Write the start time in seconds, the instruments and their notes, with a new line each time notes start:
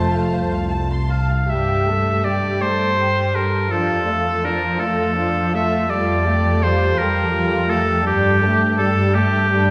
Already playing: double bass section F1, cello section F2, viola section A3, clarinet F4, violin section C5 A5
0.13 violin section F5
0.33 cello section C2, double bass section C2, violin section C5
0.52 violin section F5
0.71 violin section A5
0.91 violin section C6
1.10 oboe F5, violin section A5
1.29 violin section F5
1.49 cello section G2, viola section G3, violin section G4, oboe E5
1.87 viola section A3, violin section A4
2.24 viola section G3, violin section G4, oboe D5
2.61 cello section G2, viola section A3, violin section A4, oboe C5
2.99 viola section G3, violin section G4
3.35 viola section G3, violin section A4, oboe A#4
3.72 cello section F2, viola section F3, violin section D4 F4, oboe A4
4.07 viola section A3, violin section F4 A4
4.43 viola section F3, violin section D4 F4, oboe A#4
4.80 cello section F2, viola section A3, violin section F4 A4, oboe A4
5.17 viola section F3, violin section D4 F4
5.54 viola section A3, violin section F4 A4, oboe E5
5.90 cello section F2, viola section G3, violin section F4 A4, oboe D5
6.26 viola section A3, violin section G4 A4
6.63 viola section G3, violin section F4 A4, oboe C5
6.98 cello section F2, viola section G3, violin section G4 A4, oboe A#4
7.35 viola section G3, violin section F4 A4
7.70 viola section A3, violin section G4 A4, oboe A4
8.06 cello section G2, viola section G3, violin section D4 A4, oboe G4
8.43 violin section A3 G4, viola section A3
8.78 viola section G3, violin section D4 A4, oboe A4
9.14 cello section G2, viola section A3, violin section A3 G4, oboe G4
9.51 viola section G3, violin section D4 A4